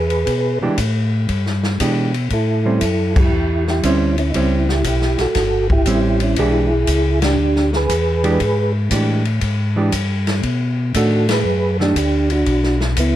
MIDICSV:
0, 0, Header, 1, 5, 480
1, 0, Start_track
1, 0, Tempo, 508044
1, 258, Time_signature, 4, 2, 24, 8
1, 12433, End_track
2, 0, Start_track
2, 0, Title_t, "Tonewheel organ"
2, 0, Program_c, 0, 16
2, 0, Note_on_c, 0, 68, 68
2, 0, Note_on_c, 0, 71, 87
2, 554, Note_off_c, 0, 68, 0
2, 554, Note_off_c, 0, 71, 0
2, 2201, Note_on_c, 0, 69, 73
2, 2208, Note_on_c, 0, 64, 63
2, 2961, Note_off_c, 0, 64, 0
2, 3014, Note_on_c, 0, 67, 80
2, 3019, Note_off_c, 0, 69, 0
2, 3021, Note_on_c, 0, 64, 66
2, 3446, Note_off_c, 0, 67, 0
2, 3450, Note_off_c, 0, 64, 0
2, 3496, Note_on_c, 0, 67, 76
2, 3501, Note_on_c, 0, 64, 62
2, 3624, Note_off_c, 0, 67, 0
2, 3627, Note_off_c, 0, 64, 0
2, 3638, Note_on_c, 0, 64, 81
2, 3642, Note_on_c, 0, 61, 56
2, 3932, Note_off_c, 0, 64, 0
2, 3934, Note_off_c, 0, 61, 0
2, 3958, Note_on_c, 0, 64, 76
2, 3966, Note_on_c, 0, 61, 56
2, 4063, Note_off_c, 0, 61, 0
2, 4070, Note_off_c, 0, 64, 0
2, 4077, Note_on_c, 0, 63, 63
2, 4107, Note_off_c, 0, 63, 0
2, 4113, Note_on_c, 0, 64, 71
2, 4119, Note_on_c, 0, 61, 61
2, 4412, Note_off_c, 0, 61, 0
2, 4436, Note_off_c, 0, 64, 0
2, 4442, Note_on_c, 0, 67, 86
2, 4447, Note_on_c, 0, 64, 64
2, 4577, Note_off_c, 0, 67, 0
2, 4580, Note_off_c, 0, 64, 0
2, 4603, Note_on_c, 0, 67, 71
2, 4607, Note_on_c, 0, 64, 60
2, 4897, Note_off_c, 0, 64, 0
2, 4923, Note_on_c, 0, 66, 68
2, 4924, Note_on_c, 0, 69, 106
2, 4926, Note_off_c, 0, 67, 0
2, 5361, Note_off_c, 0, 66, 0
2, 5361, Note_off_c, 0, 69, 0
2, 5405, Note_on_c, 0, 67, 98
2, 5410, Note_on_c, 0, 64, 66
2, 5845, Note_off_c, 0, 64, 0
2, 5889, Note_off_c, 0, 67, 0
2, 5889, Note_on_c, 0, 61, 67
2, 5890, Note_on_c, 0, 64, 76
2, 6021, Note_off_c, 0, 61, 0
2, 6033, Note_off_c, 0, 64, 0
2, 6039, Note_on_c, 0, 68, 98
2, 6044, Note_on_c, 0, 64, 75
2, 6798, Note_off_c, 0, 68, 0
2, 6800, Note_off_c, 0, 64, 0
2, 6845, Note_on_c, 0, 62, 70
2, 6850, Note_on_c, 0, 67, 102
2, 7282, Note_off_c, 0, 62, 0
2, 7285, Note_off_c, 0, 67, 0
2, 7328, Note_on_c, 0, 68, 64
2, 7336, Note_on_c, 0, 71, 101
2, 8239, Note_off_c, 0, 68, 0
2, 8243, Note_off_c, 0, 71, 0
2, 10363, Note_on_c, 0, 66, 63
2, 10363, Note_on_c, 0, 69, 76
2, 10655, Note_off_c, 0, 66, 0
2, 10686, Note_off_c, 0, 69, 0
2, 10687, Note_on_c, 0, 68, 75
2, 10690, Note_on_c, 0, 71, 102
2, 11123, Note_off_c, 0, 68, 0
2, 11124, Note_off_c, 0, 71, 0
2, 11166, Note_on_c, 0, 67, 77
2, 11170, Note_on_c, 0, 62, 57
2, 11301, Note_off_c, 0, 62, 0
2, 11304, Note_off_c, 0, 67, 0
2, 11316, Note_on_c, 0, 67, 80
2, 11318, Note_on_c, 0, 62, 62
2, 11611, Note_off_c, 0, 62, 0
2, 11639, Note_on_c, 0, 66, 76
2, 11642, Note_off_c, 0, 67, 0
2, 11644, Note_on_c, 0, 62, 60
2, 12077, Note_off_c, 0, 66, 0
2, 12080, Note_off_c, 0, 62, 0
2, 12277, Note_on_c, 0, 59, 71
2, 12283, Note_on_c, 0, 64, 92
2, 12433, Note_off_c, 0, 59, 0
2, 12433, Note_off_c, 0, 64, 0
2, 12433, End_track
3, 0, Start_track
3, 0, Title_t, "Hollow-body jazz guitar"
3, 0, Program_c, 1, 26
3, 589, Note_on_c, 1, 52, 62
3, 593, Note_on_c, 1, 62, 70
3, 594, Note_on_c, 1, 56, 66
3, 596, Note_on_c, 1, 67, 70
3, 725, Note_off_c, 1, 52, 0
3, 727, Note_off_c, 1, 56, 0
3, 727, Note_off_c, 1, 62, 0
3, 728, Note_off_c, 1, 67, 0
3, 1702, Note_on_c, 1, 52, 52
3, 1706, Note_on_c, 1, 56, 54
3, 1706, Note_on_c, 1, 62, 56
3, 1713, Note_on_c, 1, 67, 61
3, 1993, Note_off_c, 1, 52, 0
3, 1995, Note_off_c, 1, 56, 0
3, 1995, Note_off_c, 1, 62, 0
3, 1998, Note_off_c, 1, 67, 0
3, 2508, Note_on_c, 1, 55, 60
3, 2515, Note_on_c, 1, 60, 58
3, 2517, Note_on_c, 1, 61, 60
3, 2644, Note_off_c, 1, 55, 0
3, 2648, Note_off_c, 1, 60, 0
3, 2649, Note_off_c, 1, 61, 0
3, 3626, Note_on_c, 1, 55, 73
3, 3634, Note_on_c, 1, 60, 66
3, 3638, Note_on_c, 1, 61, 72
3, 3915, Note_off_c, 1, 55, 0
3, 3919, Note_off_c, 1, 60, 0
3, 3921, Note_off_c, 1, 61, 0
3, 4109, Note_on_c, 1, 55, 58
3, 4117, Note_on_c, 1, 60, 60
3, 4120, Note_on_c, 1, 61, 61
3, 4397, Note_off_c, 1, 55, 0
3, 4401, Note_off_c, 1, 60, 0
3, 4402, Note_off_c, 1, 61, 0
3, 5548, Note_on_c, 1, 55, 62
3, 5550, Note_on_c, 1, 60, 57
3, 5553, Note_on_c, 1, 61, 65
3, 6024, Note_off_c, 1, 55, 0
3, 6024, Note_off_c, 1, 60, 0
3, 6026, Note_off_c, 1, 61, 0
3, 6034, Note_on_c, 1, 52, 60
3, 6039, Note_on_c, 1, 56, 54
3, 6040, Note_on_c, 1, 62, 65
3, 6043, Note_on_c, 1, 67, 62
3, 6320, Note_off_c, 1, 52, 0
3, 6322, Note_off_c, 1, 56, 0
3, 6323, Note_off_c, 1, 62, 0
3, 6324, Note_off_c, 1, 67, 0
3, 7783, Note_on_c, 1, 52, 73
3, 7788, Note_on_c, 1, 56, 68
3, 7789, Note_on_c, 1, 62, 68
3, 7792, Note_on_c, 1, 67, 78
3, 7923, Note_off_c, 1, 52, 0
3, 7926, Note_off_c, 1, 56, 0
3, 7926, Note_off_c, 1, 62, 0
3, 7928, Note_off_c, 1, 67, 0
3, 8420, Note_on_c, 1, 52, 52
3, 8426, Note_on_c, 1, 56, 51
3, 8427, Note_on_c, 1, 62, 52
3, 8432, Note_on_c, 1, 67, 58
3, 8714, Note_off_c, 1, 52, 0
3, 8716, Note_off_c, 1, 56, 0
3, 8717, Note_off_c, 1, 62, 0
3, 8719, Note_off_c, 1, 67, 0
3, 9223, Note_on_c, 1, 52, 58
3, 9230, Note_on_c, 1, 56, 58
3, 9234, Note_on_c, 1, 62, 60
3, 9239, Note_on_c, 1, 67, 62
3, 9363, Note_off_c, 1, 52, 0
3, 9367, Note_off_c, 1, 56, 0
3, 9369, Note_off_c, 1, 62, 0
3, 9371, Note_off_c, 1, 67, 0
3, 10347, Note_on_c, 1, 51, 51
3, 10352, Note_on_c, 1, 57, 58
3, 10356, Note_on_c, 1, 62, 61
3, 10636, Note_off_c, 1, 51, 0
3, 10638, Note_off_c, 1, 57, 0
3, 10641, Note_off_c, 1, 62, 0
3, 11144, Note_on_c, 1, 51, 46
3, 11151, Note_on_c, 1, 57, 52
3, 11159, Note_on_c, 1, 62, 54
3, 11283, Note_off_c, 1, 51, 0
3, 11286, Note_off_c, 1, 57, 0
3, 11290, Note_off_c, 1, 62, 0
3, 12433, End_track
4, 0, Start_track
4, 0, Title_t, "Tonewheel organ"
4, 0, Program_c, 2, 16
4, 0, Note_on_c, 2, 40, 81
4, 241, Note_off_c, 2, 40, 0
4, 252, Note_on_c, 2, 47, 72
4, 557, Note_off_c, 2, 47, 0
4, 574, Note_on_c, 2, 47, 37
4, 654, Note_off_c, 2, 47, 0
4, 734, Note_on_c, 2, 45, 86
4, 1201, Note_off_c, 2, 45, 0
4, 1214, Note_on_c, 2, 43, 81
4, 1681, Note_off_c, 2, 43, 0
4, 1698, Note_on_c, 2, 47, 72
4, 2163, Note_off_c, 2, 47, 0
4, 2178, Note_on_c, 2, 45, 71
4, 2643, Note_off_c, 2, 45, 0
4, 2656, Note_on_c, 2, 42, 85
4, 3122, Note_off_c, 2, 42, 0
4, 3142, Note_on_c, 2, 40, 85
4, 3605, Note_off_c, 2, 40, 0
4, 3619, Note_on_c, 2, 38, 83
4, 4084, Note_off_c, 2, 38, 0
4, 4103, Note_on_c, 2, 37, 79
4, 4567, Note_off_c, 2, 37, 0
4, 4580, Note_on_c, 2, 35, 92
4, 4882, Note_off_c, 2, 35, 0
4, 4902, Note_on_c, 2, 35, 43
4, 4979, Note_off_c, 2, 35, 0
4, 5056, Note_on_c, 2, 31, 81
4, 5523, Note_off_c, 2, 31, 0
4, 5534, Note_on_c, 2, 33, 85
4, 6002, Note_off_c, 2, 33, 0
4, 6012, Note_on_c, 2, 35, 81
4, 6481, Note_off_c, 2, 35, 0
4, 6494, Note_on_c, 2, 37, 94
4, 6962, Note_off_c, 2, 37, 0
4, 6968, Note_on_c, 2, 38, 81
4, 7440, Note_off_c, 2, 38, 0
4, 7459, Note_on_c, 2, 40, 88
4, 7925, Note_off_c, 2, 40, 0
4, 7932, Note_on_c, 2, 44, 77
4, 8402, Note_off_c, 2, 44, 0
4, 8413, Note_on_c, 2, 45, 83
4, 8882, Note_off_c, 2, 45, 0
4, 8895, Note_on_c, 2, 44, 86
4, 9363, Note_off_c, 2, 44, 0
4, 9376, Note_on_c, 2, 43, 74
4, 9843, Note_off_c, 2, 43, 0
4, 9856, Note_on_c, 2, 47, 78
4, 10323, Note_off_c, 2, 47, 0
4, 10339, Note_on_c, 2, 45, 89
4, 10804, Note_off_c, 2, 45, 0
4, 10815, Note_on_c, 2, 42, 78
4, 11282, Note_off_c, 2, 42, 0
4, 11296, Note_on_c, 2, 38, 78
4, 11762, Note_off_c, 2, 38, 0
4, 11778, Note_on_c, 2, 35, 80
4, 12242, Note_off_c, 2, 35, 0
4, 12251, Note_on_c, 2, 37, 89
4, 12433, Note_off_c, 2, 37, 0
4, 12433, End_track
5, 0, Start_track
5, 0, Title_t, "Drums"
5, 95, Note_on_c, 9, 51, 47
5, 190, Note_off_c, 9, 51, 0
5, 253, Note_on_c, 9, 51, 54
5, 256, Note_on_c, 9, 36, 16
5, 348, Note_off_c, 9, 51, 0
5, 350, Note_off_c, 9, 36, 0
5, 733, Note_on_c, 9, 44, 51
5, 733, Note_on_c, 9, 51, 70
5, 737, Note_on_c, 9, 36, 22
5, 827, Note_off_c, 9, 44, 0
5, 827, Note_off_c, 9, 51, 0
5, 832, Note_off_c, 9, 36, 0
5, 1215, Note_on_c, 9, 51, 51
5, 1218, Note_on_c, 9, 36, 20
5, 1310, Note_off_c, 9, 51, 0
5, 1313, Note_off_c, 9, 36, 0
5, 1381, Note_on_c, 9, 38, 30
5, 1475, Note_off_c, 9, 38, 0
5, 1543, Note_on_c, 9, 38, 42
5, 1637, Note_off_c, 9, 38, 0
5, 1699, Note_on_c, 9, 44, 51
5, 1699, Note_on_c, 9, 51, 72
5, 1701, Note_on_c, 9, 36, 25
5, 1794, Note_off_c, 9, 44, 0
5, 1794, Note_off_c, 9, 51, 0
5, 1795, Note_off_c, 9, 36, 0
5, 2024, Note_on_c, 9, 51, 45
5, 2118, Note_off_c, 9, 51, 0
5, 2176, Note_on_c, 9, 51, 49
5, 2180, Note_on_c, 9, 36, 19
5, 2270, Note_off_c, 9, 51, 0
5, 2275, Note_off_c, 9, 36, 0
5, 2653, Note_on_c, 9, 44, 53
5, 2653, Note_on_c, 9, 51, 67
5, 2660, Note_on_c, 9, 36, 19
5, 2748, Note_off_c, 9, 44, 0
5, 2748, Note_off_c, 9, 51, 0
5, 2755, Note_off_c, 9, 36, 0
5, 2985, Note_on_c, 9, 49, 64
5, 2987, Note_on_c, 9, 36, 74
5, 3079, Note_off_c, 9, 49, 0
5, 3081, Note_off_c, 9, 36, 0
5, 3470, Note_on_c, 9, 38, 32
5, 3564, Note_off_c, 9, 38, 0
5, 3622, Note_on_c, 9, 44, 61
5, 3622, Note_on_c, 9, 51, 66
5, 3623, Note_on_c, 9, 36, 23
5, 3717, Note_off_c, 9, 44, 0
5, 3717, Note_off_c, 9, 51, 0
5, 3718, Note_off_c, 9, 36, 0
5, 3947, Note_on_c, 9, 51, 46
5, 4041, Note_off_c, 9, 51, 0
5, 4102, Note_on_c, 9, 51, 58
5, 4103, Note_on_c, 9, 36, 17
5, 4196, Note_off_c, 9, 51, 0
5, 4198, Note_off_c, 9, 36, 0
5, 4430, Note_on_c, 9, 38, 45
5, 4524, Note_off_c, 9, 38, 0
5, 4576, Note_on_c, 9, 44, 54
5, 4576, Note_on_c, 9, 51, 69
5, 4581, Note_on_c, 9, 36, 28
5, 4670, Note_off_c, 9, 44, 0
5, 4670, Note_off_c, 9, 51, 0
5, 4676, Note_off_c, 9, 36, 0
5, 4737, Note_on_c, 9, 38, 27
5, 4832, Note_off_c, 9, 38, 0
5, 4894, Note_on_c, 9, 38, 36
5, 4899, Note_on_c, 9, 51, 41
5, 4989, Note_off_c, 9, 38, 0
5, 4993, Note_off_c, 9, 51, 0
5, 5051, Note_on_c, 9, 51, 60
5, 5055, Note_on_c, 9, 38, 36
5, 5059, Note_on_c, 9, 36, 24
5, 5146, Note_off_c, 9, 51, 0
5, 5150, Note_off_c, 9, 38, 0
5, 5153, Note_off_c, 9, 36, 0
5, 5384, Note_on_c, 9, 36, 51
5, 5479, Note_off_c, 9, 36, 0
5, 5532, Note_on_c, 9, 44, 51
5, 5532, Note_on_c, 9, 51, 61
5, 5538, Note_on_c, 9, 36, 19
5, 5627, Note_off_c, 9, 44, 0
5, 5627, Note_off_c, 9, 51, 0
5, 5633, Note_off_c, 9, 36, 0
5, 5857, Note_on_c, 9, 51, 49
5, 5952, Note_off_c, 9, 51, 0
5, 6011, Note_on_c, 9, 51, 57
5, 6017, Note_on_c, 9, 36, 20
5, 6105, Note_off_c, 9, 51, 0
5, 6112, Note_off_c, 9, 36, 0
5, 6492, Note_on_c, 9, 44, 59
5, 6492, Note_on_c, 9, 51, 73
5, 6498, Note_on_c, 9, 36, 21
5, 6587, Note_off_c, 9, 44, 0
5, 6587, Note_off_c, 9, 51, 0
5, 6592, Note_off_c, 9, 36, 0
5, 6820, Note_on_c, 9, 51, 62
5, 6823, Note_on_c, 9, 38, 76
5, 6914, Note_off_c, 9, 51, 0
5, 6918, Note_off_c, 9, 38, 0
5, 7140, Note_on_c, 9, 38, 29
5, 7235, Note_off_c, 9, 38, 0
5, 7302, Note_on_c, 9, 38, 41
5, 7396, Note_off_c, 9, 38, 0
5, 7458, Note_on_c, 9, 44, 62
5, 7458, Note_on_c, 9, 51, 66
5, 7459, Note_on_c, 9, 36, 19
5, 7553, Note_off_c, 9, 36, 0
5, 7553, Note_off_c, 9, 44, 0
5, 7553, Note_off_c, 9, 51, 0
5, 7784, Note_on_c, 9, 51, 49
5, 7879, Note_off_c, 9, 51, 0
5, 7935, Note_on_c, 9, 51, 57
5, 7938, Note_on_c, 9, 36, 23
5, 8030, Note_off_c, 9, 51, 0
5, 8033, Note_off_c, 9, 36, 0
5, 8415, Note_on_c, 9, 44, 62
5, 8415, Note_on_c, 9, 51, 70
5, 8418, Note_on_c, 9, 36, 25
5, 8509, Note_off_c, 9, 44, 0
5, 8509, Note_off_c, 9, 51, 0
5, 8513, Note_off_c, 9, 36, 0
5, 8742, Note_on_c, 9, 51, 44
5, 8837, Note_off_c, 9, 51, 0
5, 8892, Note_on_c, 9, 51, 56
5, 8897, Note_on_c, 9, 36, 20
5, 8987, Note_off_c, 9, 51, 0
5, 8992, Note_off_c, 9, 36, 0
5, 9374, Note_on_c, 9, 44, 61
5, 9374, Note_on_c, 9, 51, 75
5, 9379, Note_on_c, 9, 36, 17
5, 9469, Note_off_c, 9, 44, 0
5, 9469, Note_off_c, 9, 51, 0
5, 9473, Note_off_c, 9, 36, 0
5, 9703, Note_on_c, 9, 51, 48
5, 9706, Note_on_c, 9, 38, 47
5, 9797, Note_off_c, 9, 51, 0
5, 9801, Note_off_c, 9, 38, 0
5, 9857, Note_on_c, 9, 51, 54
5, 9860, Note_on_c, 9, 36, 15
5, 9951, Note_off_c, 9, 51, 0
5, 9954, Note_off_c, 9, 36, 0
5, 10339, Note_on_c, 9, 44, 53
5, 10339, Note_on_c, 9, 51, 74
5, 10341, Note_on_c, 9, 36, 20
5, 10434, Note_off_c, 9, 44, 0
5, 10434, Note_off_c, 9, 51, 0
5, 10436, Note_off_c, 9, 36, 0
5, 10663, Note_on_c, 9, 51, 68
5, 10667, Note_on_c, 9, 38, 72
5, 10758, Note_off_c, 9, 51, 0
5, 10761, Note_off_c, 9, 38, 0
5, 11150, Note_on_c, 9, 38, 36
5, 11244, Note_off_c, 9, 38, 0
5, 11300, Note_on_c, 9, 44, 60
5, 11300, Note_on_c, 9, 51, 70
5, 11301, Note_on_c, 9, 36, 20
5, 11394, Note_off_c, 9, 44, 0
5, 11394, Note_off_c, 9, 51, 0
5, 11395, Note_off_c, 9, 36, 0
5, 11619, Note_on_c, 9, 51, 47
5, 11714, Note_off_c, 9, 51, 0
5, 11775, Note_on_c, 9, 51, 56
5, 11778, Note_on_c, 9, 36, 21
5, 11869, Note_off_c, 9, 51, 0
5, 11872, Note_off_c, 9, 36, 0
5, 11936, Note_on_c, 9, 38, 28
5, 12030, Note_off_c, 9, 38, 0
5, 12097, Note_on_c, 9, 38, 45
5, 12192, Note_off_c, 9, 38, 0
5, 12249, Note_on_c, 9, 44, 55
5, 12249, Note_on_c, 9, 51, 68
5, 12255, Note_on_c, 9, 36, 19
5, 12344, Note_off_c, 9, 44, 0
5, 12344, Note_off_c, 9, 51, 0
5, 12350, Note_off_c, 9, 36, 0
5, 12433, End_track
0, 0, End_of_file